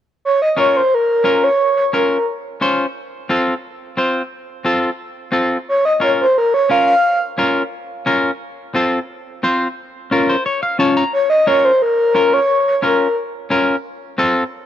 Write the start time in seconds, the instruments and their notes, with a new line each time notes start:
0.25 soft synth lead C#5
0.42 soft synth lead D#5
0.57 clean electric guitar C#4 F4 A#4, soft synth lead C#5
0.76 soft synth lead C5
0.94 soft synth lead A#4
1.24 clean electric guitar C#4 F4 A#4
1.44 soft synth lead C#5
1.77 soft synth lead C#5
1.93 clean electric guitar C#4 F4 A#4, soft synth lead A#4
2.61 clean electric guitar C#4 F4 C5
3.29 clean electric guitar C4 F4 A4
3.97 clean electric guitar C4 F4 C5
4.65 clean electric guitar C4 F4 A4
5.32 clean electric guitar C4 F4 A4
5.69 soft synth lead C#5
5.85 soft synth lead D#5
6.00 clean electric guitar C#4 F4 A#4, soft synth lead C#5
6.21 soft synth lead C5
6.38 soft synth lead A#4
6.54 soft synth lead C#5
6.70 clean electric guitar C#4 F4 A#4, soft synth lead F5
6.87 soft synth lead F5
7.38 clean electric guitar C#4 F4 A#4
8.06 clean electric guitar C#4 F4 A#4
8.75 clean electric guitar C4 F4 A4
9.43 clean electric guitar C4 F4 C5
10.11 clean electric guitar C#4 F4 A#4
10.29 clean electric guitar C5
10.46 clean electric guitar C#5
10.63 clean electric guitar F5
10.79 clean electric guitar C#4 F4 C#5 A5
10.97 clean electric guitar A#5
11.13 soft synth lead C#5
11.30 soft synth lead D#5
11.47 clean electric guitar C#4 F4 A#4, soft synth lead C#5
11.64 soft synth lead C5
11.82 soft synth lead A#4
12.15 clean electric guitar C#4 F4 A#4
12.33 soft synth lead C#5
12.68 soft synth lead C#5
12.82 clean electric guitar C#4 F4 A#4, soft synth lead A#4
13.50 clean electric guitar C#4 F4 A#4
14.18 clean electric guitar C4 F4 A4